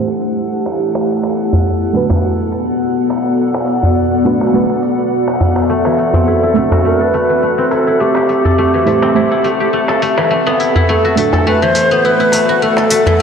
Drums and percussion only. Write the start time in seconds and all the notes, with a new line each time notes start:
0.08 darbuka ka
0.22 open hi-hat
0.66 darbuka tek
0.79 open hi-hat
0.95 darbuka tek
1.23 darbuka tek
1.37 open hi-hat
1.53 darbuka dum
1.94 open hi-hat, darbuka ka
2.10 darbuka tek, darbuka dum
2.52 open hi-hat, darbuka ka
3.10 open hi-hat, darbuka ka, darbuka tek
3.54 darbuka tek
3.68 open hi-hat
3.83 darbuka dum
4.25 open hi-hat, darbuka ka
4.41 darbuka tek
4.70 darbuka ka
4.83 open hi-hat
5.28 darbuka tek
5.40 open hi-hat, darbuka dum
5.56 darbuka tek
5.85 darbuka tek
5.98 open hi-hat
6.13 darbuka dum
6.56 open hi-hat, darbuka ka
6.71 darbuka tek, darbuka dum
7.14 open hi-hat, darbuka ka
7.71 open hi-hat, darbuka ka, darbuka tek
8.15 darbuka tek
8.29 open hi-hat
8.45 darbuka dum
8.87 open hi-hat
9.02 darbuka tek
9.31 darbuka ka
9.44 open hi-hat
9.88 darbuka tek
10.02 open hi-hat
10.18 darbuka tek
10.47 darbuka tek
10.60 open hi-hat
10.75 darbuka dum
11.17 open hi-hat, darbuka ka
11.33 darbuka tek, darbuka dum
11.75 open hi-hat, darbuka ka
12.32 open hi-hat, darbuka ka, darbuka tek
12.77 darbuka tek
12.90 open hi-hat
13.06 darbuka dum